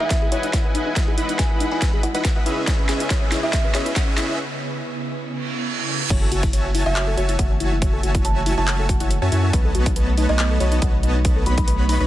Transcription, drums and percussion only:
0.10 kick, snare, closed hi-hat
0.32 closed hi-hat
0.43 closed hi-hat
0.53 kick, snare, closed hi-hat
0.75 closed hi-hat
0.96 kick, snare, closed hi-hat
1.18 closed hi-hat
1.29 closed hi-hat
1.39 kick, snare, closed hi-hat
1.60 closed hi-hat
1.82 kick, snare, closed hi-hat
2.03 closed hi-hat
2.15 closed hi-hat
2.25 kick, snare, closed hi-hat
2.46 closed hi-hat
2.67 kick, snare, closed hi-hat
2.89 snare, closed hi-hat
3.00 closed hi-hat
3.10 kick, snare, closed hi-hat
3.32 snare, closed hi-hat
3.53 kick, snare, closed hi-hat
3.75 snare, closed hi-hat
3.86 closed hi-hat
3.96 kick, snare, closed hi-hat
4.18 snare, closed hi-hat
5.79 high tom
5.89 mid tom
6.00 mid tom
6.10 kick, closed hi-hat, crash
6.32 closed hi-hat
6.43 kick, closed hi-hat
6.53 closed hi-hat
6.75 open hi-hat
6.96 clap, closed hi-hat
7.18 closed hi-hat
7.29 closed hi-hat
7.39 kick, closed hi-hat
7.60 closed hi-hat
7.82 kick, closed hi-hat
8.03 closed hi-hat
8.15 kick, closed hi-hat
8.25 closed hi-hat
8.46 open hi-hat
8.68 clap, closed hi-hat
8.89 kick, closed hi-hat
9.00 closed hi-hat
9.11 closed hi-hat
9.32 closed hi-hat
9.53 kick, closed hi-hat
9.75 closed hi-hat
9.86 kick, closed hi-hat
9.96 closed hi-hat
10.17 open hi-hat
10.39 clap, closed hi-hat
10.60 closed hi-hat
10.72 closed hi-hat
10.82 kick, closed hi-hat
11.03 closed hi-hat
11.25 kick, closed hi-hat
11.46 closed hi-hat
11.58 kick, closed hi-hat
11.68 closed hi-hat
11.89 open hi-hat

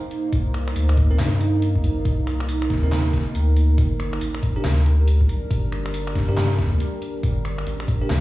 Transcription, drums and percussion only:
0.11 closed hi-hat
0.33 kick, closed hi-hat
0.54 finger snap, closed hi-hat
0.68 finger snap
0.76 closed hi-hat
0.89 finger snap
0.97 kick, closed hi-hat
1.19 snare, clap, closed hi-hat
1.41 closed hi-hat
1.62 closed hi-hat
1.75 kick
1.84 closed hi-hat
2.05 kick, closed hi-hat
2.27 finger snap, closed hi-hat
2.40 finger snap
2.49 closed hi-hat
2.62 finger snap
2.70 kick, snare, closed hi-hat
2.92 snare, clap, closed hi-hat
3.13 kick, snare, closed hi-hat
3.35 closed hi-hat
3.57 closed hi-hat
3.78 kick, closed hi-hat
4.00 finger snap, closed hi-hat
4.13 finger snap
4.21 closed hi-hat
4.35 finger snap
4.43 kick, closed hi-hat
4.64 snare, clap, closed hi-hat
4.86 closed hi-hat
5.08 closed hi-hat
5.21 kick
5.29 closed hi-hat
5.51 kick, closed hi-hat
5.72 finger snap, closed hi-hat
5.86 finger snap
5.94 closed hi-hat
6.07 finger snap
6.15 kick, snare, closed hi-hat
6.37 snare, clap, closed hi-hat
6.59 kick, snare, closed hi-hat
6.80 closed hi-hat
7.02 closed hi-hat
7.23 kick, closed hi-hat
7.45 finger snap, closed hi-hat
7.58 finger snap
7.67 closed hi-hat
7.80 finger snap
7.88 kick, closed hi-hat
8.10 snare, clap, closed hi-hat

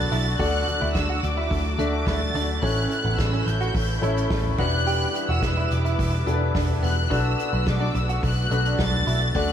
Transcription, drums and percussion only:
0.11 hi-hat pedal, open hi-hat
0.39 kick, hi-hat pedal, open hi-hat
0.67 floor tom, hi-hat pedal, open hi-hat
0.95 kick, snare, hi-hat pedal, open hi-hat
1.23 hi-hat pedal, open hi-hat
1.51 kick, hi-hat pedal, open hi-hat
1.79 hi-hat pedal, open hi-hat
2.07 kick, snare, hi-hat pedal, open hi-hat
2.21 floor tom
2.35 hi-hat pedal, open hi-hat
2.63 kick, hi-hat pedal, open hi-hat
2.91 hi-hat pedal, open hi-hat
3.19 kick, snare, hi-hat pedal, open hi-hat
3.33 open hi-hat
3.47 hi-hat pedal, open hi-hat
3.61 hi-hat pedal
3.75 kick, hi-hat pedal, open hi-hat
3.89 open hi-hat
4.03 hi-hat pedal, open hi-hat
4.17 hi-hat pedal
4.30 kick, snare, hi-hat pedal, open hi-hat
4.45 floor tom
4.58 kick, crash
4.87 hi-hat pedal, open hi-hat
5.15 hi-hat pedal, open hi-hat
5.42 kick, snare, hi-hat pedal, open hi-hat
5.56 open hi-hat
5.71 hi-hat pedal, open hi-hat
5.85 hi-hat pedal
5.99 kick, hi-hat pedal, open hi-hat
6.27 hi-hat pedal, open hi-hat
6.55 kick, snare, hi-hat pedal, open hi-hat
6.69 floor tom
6.83 hi-hat pedal, open hi-hat
7.11 kick, hi-hat pedal, open hi-hat
7.39 hi-hat pedal, open hi-hat
7.67 kick, snare, hi-hat pedal, open hi-hat
7.80 open hi-hat
7.94 hi-hat pedal, open hi-hat
8.09 hi-hat pedal
8.23 kick, hi-hat pedal, open hi-hat
8.37 open hi-hat
8.51 hi-hat pedal, open hi-hat
8.65 hi-hat pedal
8.79 kick, snare, hi-hat pedal, open hi-hat
8.93 floor tom
9.07 hi-hat pedal, open hi-hat
9.35 kick, hi-hat pedal, open hi-hat

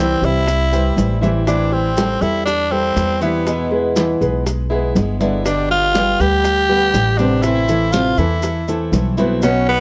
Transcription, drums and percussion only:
0.23 high bongo, high conga, maracas
0.47 high bongo, high conga, maracas
0.72 high bongo, high conga, maracas
0.97 high bongo, low bongo, high conga, maracas
1.23 high conga, maracas
1.47 high bongo, maracas
1.72 high bongo, high conga
1.97 high bongo, high conga, maracas
2.21 high bongo, high conga, maracas
2.47 high bongo, high conga, maracas
2.72 high bongo, high conga
2.96 high bongo, low bongo, high conga, maracas
3.22 high conga, maracas
3.47 high bongo, high conga, maracas
3.71 high bongo, high conga
3.96 high bongo, high conga, maracas
4.21 high bongo, high conga, maracas
4.47 high bongo, high conga, maracas
4.71 high bongo, high conga
4.96 high bongo, low bongo, high conga, maracas
5.21 high conga, maracas
5.46 high bongo, maracas
5.71 high bongo, high conga
5.95 high bongo, high conga, maracas
6.19 high bongo, high conga, maracas
6.45 high bongo, high conga, maracas
6.70 high bongo, high conga
6.94 high bongo, low bongo, high conga, maracas
7.19 high conga, maracas
7.43 high bongo, maracas
7.68 high bongo, high conga, maracas
7.93 high bongo, high conga, maracas
8.18 high bongo, high conga, maracas
8.42 high bongo, high conga, maracas
8.68 high bongo, high conga, maracas
8.93 high bongo, low bongo, high conga, maracas
9.17 high conga, maracas
9.42 high bongo, maracas
9.68 high bongo, high conga

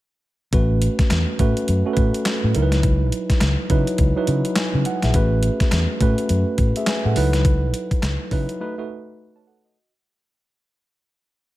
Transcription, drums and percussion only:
0.53 kick, closed hi-hat
0.82 closed hi-hat
0.99 kick, snare, closed hi-hat
1.10 snare, clap, closed hi-hat
1.39 kick, closed hi-hat
1.57 closed hi-hat
1.68 closed hi-hat
1.97 kick, closed hi-hat
2.14 closed hi-hat
2.26 snare, clap, closed hi-hat
2.55 closed hi-hat
2.72 snare, closed hi-hat
2.83 kick, closed hi-hat
3.12 closed hi-hat
3.30 kick, snare, closed hi-hat
3.41 snare, clap, closed hi-hat
3.70 kick, closed hi-hat
3.87 closed hi-hat
3.98 kick, closed hi-hat
4.27 closed hi-hat
4.45 closed hi-hat
4.56 snare, clap, closed hi-hat
4.85 closed hi-hat
5.02 snare, closed hi-hat
5.14 kick, closed hi-hat
5.43 closed hi-hat
5.60 kick, snare, closed hi-hat
5.72 snare, clap, closed hi-hat
6.01 kick, closed hi-hat
6.18 closed hi-hat
6.29 closed hi-hat
6.58 kick, closed hi-hat
6.76 closed hi-hat
6.87 snare, clap, closed hi-hat
7.16 open hi-hat
7.33 snare, closed hi-hat
7.45 kick, closed hi-hat
7.74 closed hi-hat
7.91 kick, closed hi-hat
8.03 snare, clap, closed hi-hat
8.31 kick, open hi-hat
8.49 closed hi-hat

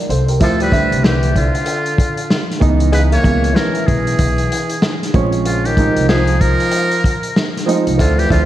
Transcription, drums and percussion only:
0.10 closed hi-hat
0.28 closed hi-hat
0.41 kick, closed hi-hat
0.60 closed hi-hat
0.72 kick, closed hi-hat
0.92 closed hi-hat
1.04 snare
1.23 closed hi-hat
1.36 kick, closed hi-hat
1.55 closed hi-hat
1.66 closed hi-hat
1.86 closed hi-hat
1.98 kick, closed hi-hat
2.17 closed hi-hat
2.30 snare
2.51 snare, closed hi-hat
2.61 kick, closed hi-hat
2.80 closed hi-hat
2.93 closed hi-hat
3.12 closed hi-hat
3.24 kick, closed hi-hat
3.44 closed hi-hat
3.56 snare
3.75 closed hi-hat
3.88 kick, closed hi-hat
4.07 closed hi-hat
4.19 kick, closed hi-hat
4.38 closed hi-hat
4.52 closed hi-hat
4.69 closed hi-hat
4.82 snare
5.03 snare, closed hi-hat
5.14 kick, closed hi-hat
5.32 closed hi-hat
5.45 closed hi-hat
5.65 closed hi-hat
5.77 kick, closed hi-hat
5.97 closed hi-hat
6.09 snare
6.27 closed hi-hat
6.41 kick, closed hi-hat
6.60 closed hi-hat
6.71 closed hi-hat
6.91 closed hi-hat
7.04 kick, closed hi-hat
7.23 closed hi-hat
7.36 snare
7.57 snare, closed hi-hat
7.69 closed hi-hat
7.87 closed hi-hat
7.99 kick, closed hi-hat
8.19 closed hi-hat
8.30 kick, closed hi-hat

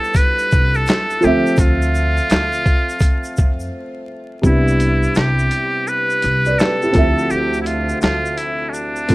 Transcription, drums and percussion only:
0.04 shaker
0.14 kick, closed hi-hat, shaker
0.16 shaker
0.39 shaker
0.51 kick, shaker
0.74 shaker
0.86 snare, clap, closed hi-hat, shaker
1.10 shaker
1.22 shaker
1.47 shaker
1.57 kick, closed hi-hat, shaker
1.58 shaker
1.82 shaker
1.95 shaker
2.17 shaker
2.30 closed hi-hat, shaker
2.32 snare, clap, shaker
2.52 shaker
2.66 kick, shaker
2.89 shaker
2.99 kick, closed hi-hat, shaker
3.02 shaker
3.24 shaker
3.37 kick, shaker
3.60 shaker
4.43 kick, shaker
4.68 shaker
4.80 closed hi-hat, shaker
5.03 shaker
5.15 snare, clap, shaker
5.39 shaker
5.51 closed hi-hat, shaker
5.87 shaker
6.10 shaker
6.22 closed hi-hat, shaker
6.45 shaker
6.59 snare, clap, shaker
6.82 shaker
6.94 kick, closed hi-hat, shaker
7.18 shaker
7.30 shaker
7.54 shaker
7.66 closed hi-hat, shaker
7.89 shaker
8.01 snare, clap, shaker
8.25 shaker
8.37 closed hi-hat, shaker
8.74 shaker
8.96 shaker
9.09 kick, closed hi-hat, shaker

